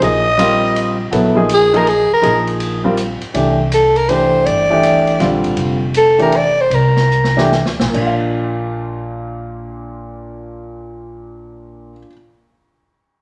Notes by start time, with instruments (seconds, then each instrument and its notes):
0.01 upright bass A#1, grand piano F3 A#3 D#4 G#4, soprano saxophone D#5, ride
0.38 grand piano G3 C4 F4 A#4, hi-hat pedal, ride
0.76 ride
1.11 upright bass A#1, grand piano F#3 B3 E4 A4, ride
1.35 grand piano F3 A#3 D#4 G#4
1.49 hi-hat pedal, ride
1.53 soprano saxophone G#4
1.73 grand piano F3 A#3 D#4 G#4, soprano saxophone A#4, ride
1.87 soprano saxophone G#4, ride
2.11 soprano saxophone A#4, muted upright bass stroke
2.22 upright bass A#1, grand piano F3 A#3 D#4 G#4, ride
2.47 ride
2.60 ride
2.84 grand piano G3 C4 F4 A#4
2.97 hi-hat pedal, ride
3.21 muted upright bass stroke, ride
3.34 upright bass C2, grand piano E3 A3 D4 G4, ride
3.72 soprano saxophone A4, hi-hat pedal, ride
3.96 soprano saxophone A#4, ride
4.09 grand piano E3 A3 D4 G4, soprano saxophone C5, ride
4.46 upright bass G1, soprano saxophone D5, ride
4.70 grand piano E3 A3 D4 G4
4.83 hi-hat pedal, ride
5.07 ride
5.20 upright bass A#1, grand piano D3 G3 C4 F4, snare, ride
5.44 kick, ride
5.57 upright bass F1, ride
5.94 soprano saxophone A4, hi-hat pedal, ride
6.19 grand piano E3 A3 D4 G4, soprano saxophone A#4, ride
6.32 soprano saxophone D5, ride
6.61 soprano saxophone C5
6.70 upright bass C2, ride
6.75 soprano saxophone A#4
6.97 snare
7.11 hi-hat pedal
7.24 snare
7.37 grand piano E3 A3 D4 G4, snare
7.52 snare
7.66 upright bass D2, snare
7.79 upright bass B1, grand piano A#2, snare
7.88 grand piano A#3
7.94 upright bass A#1, grand piano D4, kick, crash
8.00 grand piano F4
8.07 grand piano F5